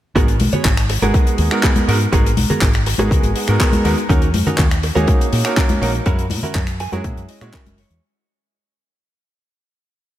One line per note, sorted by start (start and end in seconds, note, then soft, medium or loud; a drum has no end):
0.15 0.40 G#1 loud
0.15 0.23 G#3 medium
0.15 0.34 B3 loud
0.15 0.23 B3 medium
0.15 0.24 D#4 medium
0.15 0.35 F#4 loud
0.15 0.24 F#4 medium
0.15 0.34 G#4 medium
0.15 0.35 A#4 loud
0.15 0.24 A#4 medium
0.15 kick loud
0.15 closed hi-hat medium
0.28 closed hi-hat medium
0.40 0.49 B1 medium
0.40 open hi-hat loud
0.40 high conga loud
0.52 0.71 B3 medium
0.52 0.71 F#4 medium
0.52 0.71 G#4 medium
0.52 0.72 C#5 loud
0.52 muted fingered electric bass stroke soft
0.52 closed hi-hat medium
0.52 low conga medium
0.65 0.96 G#1 medium
0.65 kick loud
0.65 clap loud
0.65 closed hi-hat medium
0.77 finger snap medium
0.77 closed hi-hat medium
0.90 muted clean electric guitar stroke medium
0.90 open hi-hat loud
1.02 1.11 G#1 medium
1.02 1.49 G#3 medium
1.02 1.48 B3 medium
1.02 1.33 B3 loud
1.02 1.49 D#4 medium
1.02 1.49 F#4 medium
1.02 1.33 F#4 medium
1.02 1.33 G#4 loud
1.02 1.49 G#4 medium
1.02 1.33 A#4 loud
1.02 closed hi-hat medium
1.02 high conga medium
1.14 kick loud
1.14 closed hi-hat medium
1.27 closed hi-hat medium
1.38 1.48 D#2 loud
1.38 open hi-hat medium
1.51 1.85 G#3 medium
1.51 1.85 B3 medium
1.51 1.85 D#4 medium
1.51 1.85 F#4 medium
1.51 1.86 A#4 medium
1.51 finger snap medium
1.51 closed hi-hat medium
1.63 1.88 B3 medium
1.63 1.88 F#4 medium
1.63 1.88 G#4 medium
1.63 1.88 A#4 medium
1.63 kick loud
1.63 clap loud
1.63 closed hi-hat medium
1.76 closed hi-hat medium
1.76 high conga medium
1.88 2.06 G#2 medium
1.88 1.96 G#3 loud
1.88 1.96 B3 medium
1.88 1.96 D#4 medium
1.88 1.96 F#4 medium
1.88 1.96 A#4 loud
1.88 open hi-hat loud
2.01 closed hi-hat medium
2.12 2.38 G#1 loud
2.12 2.20 G#3 medium
2.12 2.31 B3 loud
2.12 2.20 B3 medium
2.12 2.20 D#4 medium
2.12 2.31 F#4 loud
2.12 2.21 F#4 medium
2.12 2.31 G#4 loud
2.12 2.21 A#4 medium
2.12 2.31 A#4 loud
2.12 kick loud
2.12 closed hi-hat medium
2.26 closed hi-hat medium
2.37 2.46 B1 medium
2.37 open hi-hat loud
2.37 high conga loud
2.50 2.68 B3 medium
2.50 2.68 F#4 medium
2.50 2.68 G#4 medium
2.50 2.68 A#4 medium
2.50 muted fingered electric bass stroke soft
2.50 closed hi-hat medium
2.50 low conga medium
2.61 2.93 G#1 medium
2.61 kick loud
2.61 clap loud
2.61 closed hi-hat medium
2.73 finger snap medium
2.73 closed hi-hat medium
2.86 muted clean electric guitar stroke medium
2.86 open hi-hat loud
2.98 3.08 G#1 medium
2.98 3.45 G#3 medium
2.98 3.45 B3 medium
2.98 3.30 B3 loud
2.98 3.45 D#4 medium
2.98 3.45 F#4 medium
2.98 3.30 F#4 loud
2.98 3.30 G#4 loud
2.98 3.46 G#4 medium
2.98 3.30 A#4 loud
2.98 closed hi-hat medium
2.98 high conga medium
3.11 3.20 C#2 medium
3.11 kick loud
3.11 closed hi-hat medium
3.23 3.32 G#1 loud
3.23 closed hi-hat medium
3.36 open hi-hat loud
3.47 3.57 G#2 medium
3.47 3.82 G#3 medium
3.47 3.82 B3 medium
3.47 3.82 D#4 medium
3.47 3.82 F#4 medium
3.47 3.82 A#4 loud
3.47 finger snap medium
3.47 closed hi-hat medium
3.60 3.85 B3 medium
3.60 3.85 F#4 medium
3.60 3.85 G#4 medium
3.60 3.85 A#4 medium
3.60 kick loud
3.60 clap loud
3.60 closed hi-hat medium
3.73 closed hi-hat medium
3.73 high conga loud
3.84 3.94 D#2 medium
3.84 3.92 G#3 loud
3.84 3.92 B3 medium
3.84 3.93 D#4 medium
3.84 3.93 F#4 medium
3.84 3.93 A#4 loud
3.84 open hi-hat loud
3.98 closed hi-hat medium
4.09 4.34 D#2 loud
4.09 4.17 A#3 medium
4.09 4.28 C#4 loud
4.09 4.17 C#4 medium
4.09 4.28 D#4 loud
4.09 4.17 D#4 medium
4.09 4.17 F#4 medium
4.09 4.28 F#4 medium
4.09 4.17 A#4 loud
4.09 4.28 A#4 loud
4.09 kick loud
4.09 closed hi-hat medium
4.22 closed hi-hat medium
4.34 4.43 F#2 medium
4.34 open hi-hat loud
4.34 high conga medium
4.47 4.65 C#4 medium
4.47 4.65 D#4 medium
4.47 4.65 F#4 medium
4.47 4.65 A#4 medium
4.47 muted fingered electric bass stroke soft
4.47 closed hi-hat medium
4.47 low conga loud
4.58 4.90 D#2 medium
4.58 kick loud
4.58 clap loud
4.58 closed hi-hat medium
4.71 finger snap medium
4.71 closed hi-hat medium
4.83 muted clean electric guitar stroke medium
4.83 open hi-hat loud
4.95 5.04 D#2 medium
4.95 5.42 A#3 medium
4.95 5.42 C#4 medium
4.95 5.26 C#4 medium
4.95 5.42 D#4 medium
4.95 5.26 D#4 medium
4.95 5.42 F#4 medium
4.95 5.26 F#4 medium
4.95 5.42 G#4 medium
4.95 5.26 A#4 loud
4.95 closed hi-hat medium
4.95 high conga medium
5.07 kick loud
5.07 closed hi-hat medium
5.21 closed hi-hat medium
5.33 5.41 A#2 loud
5.33 open hi-hat loud
5.45 5.79 A#3 medium
5.45 5.79 C#4 medium
5.45 5.79 D#4 medium
5.45 5.79 F#4 medium
5.45 5.79 A#4 medium
5.45 finger snap medium
5.45 closed hi-hat medium
5.57 5.82 C#4 medium
5.57 5.82 D#4 medium
5.57 5.82 F#4 medium
5.57 5.82 A#4 medium
5.57 kick loud
5.57 clap loud
5.57 closed hi-hat medium
5.69 closed hi-hat medium
5.69 high conga loud
5.81 5.99 A#1 medium
5.81 5.89 A#3 loud
5.81 5.89 C#4 medium
5.81 5.89 D#4 medium
5.81 5.90 F#4 medium
5.81 5.90 A#4 loud
5.81 open hi-hat loud
5.94 closed hi-hat medium
6.06 6.32 F#2 loud
6.06 6.14 G#3 medium
6.06 6.25 C#4 loud
6.06 6.14 C#4 medium
6.06 6.14 E4 medium
6.06 6.25 E4 medium
6.06 6.25 F#4 loud
6.06 6.14 F#4 medium
6.06 6.14 A#4 medium
6.06 6.25 A#4 loud
6.06 kick loud
6.06 closed hi-hat medium
6.19 closed hi-hat medium
6.30 6.40 A#2 medium
6.30 open hi-hat loud
6.30 high conga loud
6.43 6.62 C#4 medium
6.43 6.62 E4 medium
6.43 6.62 F#4 medium
6.43 6.62 A#4 medium
6.43 muted fingered electric bass stroke soft
6.43 closed hi-hat medium
6.43 low conga medium
6.55 6.86 F#2 loud
6.55 kick loud
6.55 clap loud
6.55 closed hi-hat medium
6.67 finger snap medium
6.67 closed hi-hat medium
6.80 6.92 G#5 medium
6.80 muted clean electric guitar stroke medium
6.80 open hi-hat medium
6.92 7.01 F#2 medium
6.92 7.38 G#3 medium
6.92 7.39 C#4 medium
6.92 7.23 C#4 loud
6.92 7.39 E4 medium
6.92 7.23 E4 medium
6.92 7.39 F#4 medium
6.92 7.23 F#4 loud
6.92 7.39 G#4 medium
6.92 7.23 A#4 loud
6.92 7.04 F#5 medium
6.92 closed hi-hat medium
6.92 high conga medium
7.04 7.13 A#2 medium
7.04 7.28 E5 medium
7.04 kick loud
7.04 closed hi-hat medium
7.17 7.25 F#2 loud
7.17 closed hi-hat medium
7.29 7.52 D#5 medium
7.29 open hi-hat loud
7.41 7.50 A#2 medium
7.41 7.49 G#3 loud
7.41 7.49 C#4 medium
7.41 7.49 E4 medium
7.41 7.49 F#4 medium
7.41 7.49 C#5 loud
7.41 finger snap medium
7.41 closed hi-hat medium
7.53 7.78 C#4 medium
7.53 7.79 E4 medium
7.53 7.78 F#4 medium
7.53 7.79 A#4 loud
7.53 7.77 E5 medium
7.53 kick loud
7.53 clap loud
7.53 closed hi-hat medium
7.66 7.83 F#1 medium
7.66 closed hi-hat medium
7.66 high conga loud
7.78 8.01 C#5 medium
7.78 open hi-hat loud
7.90 7.99 E2 medium
7.90 closed hi-hat medium